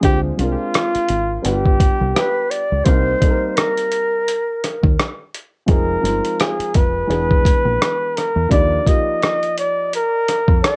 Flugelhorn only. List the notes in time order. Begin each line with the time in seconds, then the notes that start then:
0.05 G4
0.41 F4
1.47 G4
5.70 A#4
6.41 G#4
6.75 B4
8.17 A#4
8.52 D5
8.88 D#5
9.59 D5
9.95 A#4